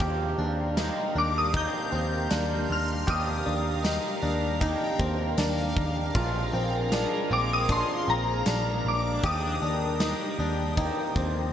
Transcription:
0.00 0.34 D#2 loud
0.00 0.74 D#3 medium
0.00 0.77 A#3 medium
0.00 0.78 D4 medium
0.00 0.38 G4 medium
0.00 6.11 G4 medium
0.00 0.78 G4 loud
0.00 11.53 A#4 medium
0.00 6.12 F5 medium
0.00 11.53 A#5 loud
0.00 kick loud
0.00 ride medium
0.38 0.89 D#2 loud
0.38 0.77 D4 medium
0.38 3.16 C6 medium
0.75 1.51 D#3 medium
0.75 1.54 A#3 medium
0.75 1.55 D4 medium
0.75 1.16 D#4 medium
0.75 snare loud
0.75 ride medium
0.75 tambourine medium
0.80 1.55 G4 medium
1.16 1.66 D#2 loud
1.16 1.53 D4 medium
1.16 1.35 D6 medium
1.38 1.56 D#6 medium
1.52 3.05 D#3 medium
1.52 3.08 A#3 medium
1.52 1.92 D#4 medium
1.52 kick loud
1.52 ride medium
1.56 3.10 D4 medium
1.56 3.10 G4 medium
1.56 2.74 G6 loud
1.92 2.26 D#2 medium
1.92 2.30 C4 medium
2.30 2.65 D#2 loud
2.30 3.08 D4 medium
2.30 snare loud
2.30 ride medium
2.30 tambourine medium
2.69 3.04 D#2 loud
2.69 5.37 F5 medium
2.69 3.10 F6 medium
3.06 3.42 D#2 loud
3.06 4.58 D#3 medium
3.06 4.62 A#3 medium
3.06 3.46 G4 loud
3.06 kick loud
3.06 ride medium
3.10 4.63 D4 medium
3.10 4.64 G4 medium
3.10 4.59 D#6 medium
3.46 3.97 D#2 loud
3.46 3.84 D4 medium
3.84 4.22 D#4 medium
3.84 6.50 G5 medium
3.84 snare loud
3.84 ride medium
3.84 tambourine medium
4.22 4.74 D#2 loud
4.22 4.61 D4 medium
4.59 6.14 D#3 medium
4.59 6.16 A#3 medium
4.59 4.99 D#4 loud
4.59 kick loud
4.59 ride medium
4.64 6.16 D4 loud
4.64 6.17 G4 medium
4.99 5.34 D#2 medium
4.99 5.38 C4 medium
4.99 kick loud
5.38 5.72 D#2 loud
5.38 6.15 D4 medium
5.38 snare loud
5.38 ride medium
5.38 tambourine medium
5.76 6.11 D#2 loud
5.76 kick loud
6.14 6.49 A#1 loud
6.14 6.92 A#2 medium
6.14 6.88 F3 medium
6.14 6.90 G#3 medium
6.14 6.92 D4 loud
6.14 6.54 F4 medium
6.14 6.93 F4 medium
6.14 9.20 G#4 medium
6.14 9.20 F5 medium
6.14 kick loud
6.14 ride medium
6.53 7.04 A#1 loud
6.53 6.92 C4 medium
6.89 7.29 F3 medium
6.89 7.30 G#3 medium
6.89 7.31 D4 medium
6.89 snare loud
6.89 ride medium
6.89 tambourine medium
6.94 7.29 F4 medium
7.30 7.82 A#1 loud
7.30 7.70 G#3 medium
7.30 7.69 C4 medium
7.30 7.70 D4 soft
7.30 7.69 F4 medium
7.30 7.52 D6 loud
7.53 7.72 D#6 loud
7.67 9.22 A#2 medium
7.67 9.21 F3 medium
7.67 9.24 G#3 medium
7.67 8.08 D4 loud
7.67 kick loud
7.67 ride medium
7.72 9.25 D4 medium
7.72 9.26 F4 medium
7.72 8.10 C6 medium
8.08 8.42 A#1 medium
8.08 8.47 C4 medium
8.08 8.88 A#5 loud
8.46 8.80 A#1 loud
8.46 9.24 D4 medium
8.46 snare loud
8.46 ride medium
8.46 tambourine medium
8.85 9.19 A#1 loud
8.85 9.26 D6 loud
9.22 9.57 D#2 loud
9.22 10.75 D#3 medium
9.22 10.77 A#3 medium
9.22 11.53 G4 medium
9.22 9.62 G4 loud
9.22 11.53 G5 medium
9.22 11.51 D#6 loud
9.22 kick loud
9.22 ride medium
9.26 10.79 D4 medium
9.26 10.81 G4 medium
9.62 10.13 D#2 loud
9.62 10.00 D4 medium
10.00 10.39 D#4 medium
10.00 snare loud
10.00 ride medium
10.00 tambourine medium
10.39 10.90 D#2 loud
10.39 10.77 D4 medium
10.75 11.53 D#3 medium
10.75 11.53 A#3 medium
10.75 11.15 D#4 loud
10.75 kick loud
10.75 ride medium
10.79 11.53 D4 loud
10.79 11.53 G4 medium
11.16 11.50 D#2 loud
11.16 11.53 C4 medium
11.16 kick medium

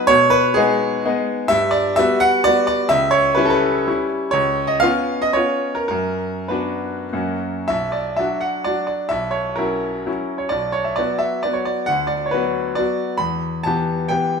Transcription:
0.07 0.55 B2 medium
0.07 0.31 C#5 loud
0.30 0.55 B4 loud
0.54 1.01 G#3 medium
0.54 1.01 B3 medium
0.54 1.01 D#4 medium
0.54 1.27 G#4 loud
1.05 1.47 G#3 medium
1.05 1.47 B3 medium
1.05 1.47 D#4 medium
1.48 1.96 G2 medium
1.48 1.73 E5 loud
1.71 1.97 D5 loud
1.96 2.42 G3 medium
1.96 2.42 B3 medium
1.96 2.43 F#4 medium
1.96 2.22 E5 loud
2.20 2.45 F#5 loud
2.44 2.88 G3 medium
2.44 2.88 B3 medium
2.44 2.88 F#4 medium
2.44 2.66 D5 loud
2.67 2.90 D5 loud
2.89 3.36 C#2 medium
2.89 3.13 E5 loud
3.11 3.37 C#5 loud
3.35 3.82 G3 medium
3.35 3.83 C#4 medium
3.35 3.83 E4 medium
3.35 3.44 B4 medium
3.45 3.53 A4 medium
3.50 4.09 B4 medium
3.87 4.29 G3 medium
3.87 4.29 C#4 medium
3.87 4.29 E4 medium
4.31 4.81 C#2 medium
4.31 4.68 C#5 medium
4.67 4.81 D#5 medium
4.80 5.32 B3 medium
4.80 5.32 C#4 medium
4.80 5.32 F4 medium
4.80 5.21 F5 loud
5.22 5.36 D#5 medium
5.33 5.87 B3 soft
5.33 5.87 C#4 soft
5.33 5.87 F4 medium
5.33 5.76 C#5 medium
5.75 5.87 A#4 medium
5.88 6.48 F#2 medium
5.88 6.49 A#4 medium
6.48 7.08 B3 medium
6.48 7.08 D4 medium
6.48 7.09 F#4 medium
6.48 7.11 B4 medium
7.13 7.68 F#2 medium
7.13 7.66 A#3 soft
7.13 7.66 C#4 soft
7.13 7.67 F#4 soft
7.68 8.18 B1 medium
7.68 7.93 E5 medium
7.92 8.18 D5 medium
8.16 8.63 F#3 soft
8.16 8.63 D4 soft
8.16 8.63 F#4 medium
8.16 8.42 E5 medium
8.41 8.65 F#5 medium
8.64 9.07 F#3 soft
8.64 9.07 D4 soft
8.64 9.08 F#4 soft
8.64 8.85 D5 medium
8.87 9.10 D5 medium
9.09 9.57 B1 medium
9.09 9.33 E5 medium
9.31 9.57 C#5 medium
9.56 10.03 F#3 soft
9.56 10.03 C#4 soft
9.56 10.03 E4 medium
9.56 10.40 A#4 medium
10.06 10.48 F#3 soft
10.06 10.48 C#4 soft
10.06 10.48 E4 soft
10.38 10.51 C#5 medium
10.49 10.96 B1 medium
10.49 10.73 D5 medium
10.72 10.85 C#5 medium
10.84 10.97 E5 medium
10.96 11.41 F#3 soft
10.96 11.41 B3 soft
10.96 11.41 F#4 medium
10.96 11.21 D5 medium
11.19 11.43 E5 medium
11.43 11.84 F#3 soft
11.43 11.84 B3 soft
11.43 11.84 F#4 soft
11.43 11.55 D5 medium
11.53 11.65 C#5 medium
11.65 11.87 D5 medium
11.86 12.32 D2 medium
11.86 12.09 F#5 medium
12.07 12.24 D5 medium
12.26 12.33 C#5 medium
12.31 12.74 F#3 soft
12.31 12.74 B3 soft
12.31 12.74 F#4 medium
12.31 12.77 B4 medium
12.75 13.17 F#3 soft
12.75 13.17 B3 soft
12.75 13.17 F#4 soft
12.75 13.19 D5 medium
13.18 13.64 E2 medium
13.18 13.64 B5 medium
13.63 14.06 E3 medium
13.63 14.06 B3 soft
13.63 14.06 G4 medium
13.63 14.08 A5 medium
14.08 14.40 E3 soft
14.08 14.40 B3 soft
14.08 14.40 G4 soft
14.08 14.40 G5 medium

